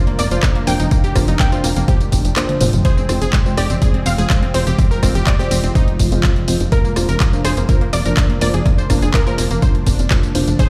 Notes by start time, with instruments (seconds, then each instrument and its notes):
Already playing: ambient pad C3 F3 A#3 D4, synth pluck D5
0.07 synth pluck A#3, closed hi-hat
0.19 analog synth bass F1, synth pluck A#3 D5, open hi-hat, tambourine
0.31 analog synth bass F1, synth stab A#3 D4 F4 C5, synth pluck F4, closed hi-hat, tambourine
0.43 synth pluck A#3, kick, cross-stick, clap, closed hi-hat, tambourine
0.55 synth pluck A#3, closed hi-hat
0.67 analog synth bass F1, synth stab A#3 D4 F4 C5, synth pluck A#3 G5, open hi-hat, tambourine
0.80 analog synth bass F1, synth pluck D#4, closed hi-hat, tambourine
0.91 ambient pad G#3, synth pluck A#3, kick, closed hi-hat, tambourine
1.04 synth pluck G4, closed hi-hat, tambourine
1.16 analog synth bass F1, synth stab A#3 D4 F4 C5, synth pluck A#3, kick, cross-stick, open hi-hat, tambourine
1.28 analog synth bass F1, synth pluck D#4, closed hi-hat, tambourine
1.39 synth pluck A#3 G5, kick, clap, closed hi-hat, tambourine
1.52 synth stab A#3 D4 F4 C5, synth pluck F4, closed hi-hat, tambourine
1.64 analog synth bass F1, synth pluck A#3, open hi-hat, tambourine
1.76 analog synth bass F1, synth pluck A#3, closed hi-hat, tambourine
1.88 synth stab A#3 D4 F4 C5, synth pluck G4, kick, closed hi-hat, tambourine
2.01 closed hi-hat, tambourine
2.12 analog synth bass F1, kick, open hi-hat, tambourine
2.25 analog synth bass F1, closed hi-hat, tambourine
2.36 synth stab A#3 D4 F4 C5, cross-stick, clap, closed hi-hat, tambourine
2.49 closed hi-hat, high tom
2.61 analog synth bass F1, synth stab A#3 D4 F4 C5, open hi-hat, mid tom, tambourine
2.73 analog synth bass F1, closed hi-hat, mid tom, tambourine
2.85 ambient pad F3 F4, synth pluck G#4 C5, kick, closed hi-hat, tambourine
2.97 synth pluck C4, tambourine
3.09 analog synth bass F1, synth stab G#3 C4 F4 C5, synth pluck C4, cross-stick, open hi-hat, tambourine
3.22 analog synth bass F1, synth pluck G#4, closed hi-hat, tambourine
3.33 synth pluck C4, kick, clap, closed hi-hat, tambourine
3.46 synth stab G#3 C4 F4 C5, synth pluck C4, tambourine
3.57 analog synth bass F1, synth pluck G4 D5, cross-stick, open hi-hat, tambourine
3.70 analog synth bass F1, synth pluck C4, closed hi-hat, tambourine
3.82 synth stab G#3 C4 F4 C5, synth pluck G#4, kick, closed hi-hat, tambourine
3.94 synth pluck C4, closed hi-hat
4.06 analog synth bass F1, synth pluck C4 F5, open hi-hat, tambourine
4.18 analog synth bass F1, synth stab G#3 C4 F4 C5, synth pluck G#4, closed hi-hat, tambourine
4.30 synth pluck C4, kick, cross-stick, clap, closed hi-hat, tambourine
4.43 synth pluck C4, closed hi-hat
4.54 analog synth bass F1, synth stab G#3 C4 F4 C5, synth pluck C4 C5, open hi-hat, tambourine
4.67 analog synth bass F1, synth pluck G4, closed hi-hat, tambourine
4.79 synth pluck C4, kick, closed hi-hat, tambourine
4.91 synth pluck A#4, tambourine
5.03 analog synth bass F1, synth stab G#3 C4 F4 C5, synth pluck C4, kick, cross-stick, open hi-hat, tambourine
5.15 analog synth bass F1, synth pluck G4, closed hi-hat, tambourine
5.27 synth pluck C4 D5, kick, clap, closed hi-hat, tambourine
5.39 synth stab G#3 C4 F4 C5, synth pluck G4, tambourine
5.51 analog synth bass F1, synth pluck C4, open hi-hat, tambourine
5.64 analog synth bass F1, synth pluck C4, closed hi-hat, tambourine
5.75 synth stab G#3 C4 F4 C5, synth pluck D#4, kick, closed hi-hat, tambourine
5.88 closed hi-hat
5.99 analog synth bass F1, kick, open hi-hat, tambourine
6.12 analog synth bass F1, synth stab G#3 C4 F4 C5, closed hi-hat, tambourine
6.23 kick, cross-stick, clap, closed hi-hat, tambourine
6.36 closed hi-hat
6.48 analog synth bass F1, synth stab G#3 C4 F4 C5, open hi-hat, tambourine
6.60 analog synth bass F1, closed hi-hat, tambourine
6.72 ambient pad A#3 D4, synth pluck A#4, kick, closed hi-hat, tambourine
6.85 synth pluck A#3, tambourine
6.96 analog synth bass F1, synth pluck A#3, synth stab A#3 D4 F4 C5, cross-stick, open hi-hat, tambourine
7.09 analog synth bass F1, synth pluck A#4, closed hi-hat, tambourine
7.20 synth pluck A#3, kick, clap, closed hi-hat, tambourine
7.33 synth pluck A#3, synth stab A#3 D4 F4 C5, tambourine
7.45 analog synth bass F1, synth pluck G#4 C5, cross-stick, open hi-hat, tambourine
7.57 analog synth bass F1, synth pluck A#3, closed hi-hat, tambourine
7.69 synth stab A#3 D4 F4 C5, synth pluck A#4, kick, closed hi-hat, tambourine
7.81 synth pluck A#3, closed hi-hat
7.93 analog synth bass F1, synth pluck A#3 D5, open hi-hat, tambourine
8.05 analog synth bass F1, synth stab A#3 D4 F4 C5, synth pluck A#4, closed hi-hat, tambourine
8.17 synth pluck A#3, kick, cross-stick, clap, closed hi-hat, tambourine
8.30 synth pluck A#3, closed hi-hat
8.41 analog synth bass F1, synth stab A#3 D4 F4 C5, synth pluck A#3 D5, open hi-hat, tambourine
8.54 analog synth bass F1, synth pluck G#4, closed hi-hat, tambourine
8.66 synth pluck A#3, kick, closed hi-hat, tambourine
8.78 synth pluck C5, tambourine
8.90 analog synth bass F1, synth stab A#3 D4 F4 C5, synth pluck A#3, kick, cross-stick, open hi-hat, tambourine
9.02 analog synth bass F1, synth pluck G#4, closed hi-hat, tambourine
9.14 synth pluck A#3 A#4, kick, clap, closed hi-hat, tambourine
9.27 synth stab A#3 D4 F4 C5, synth pluck A#4, tambourine
9.38 analog synth bass F1, synth pluck A#3, open hi-hat, tambourine
9.51 analog synth bass F1, synth pluck A#3, closed hi-hat, tambourine
9.62 synth stab A#3 D4 F4 C5, synth pluck C5, kick, closed hi-hat, tambourine
9.75 closed hi-hat
9.87 analog synth bass F1, kick, open hi-hat, tambourine
9.99 analog synth bass F1, closed hi-hat, tambourine
10.11 synth stab A#3 D4 F4 C5, kick, cross-stick, clap, closed hi-hat, tambourine
10.23 closed hi-hat, tambourine
10.35 analog synth bass F1, synth stab A#3 D4 F4 C5, open hi-hat, tambourine
10.47 analog synth bass F1, closed hi-hat, tambourine
10.59 ambient pad C3 G#3 F4, synth pluck G#4 C5, kick, closed hi-hat, tambourine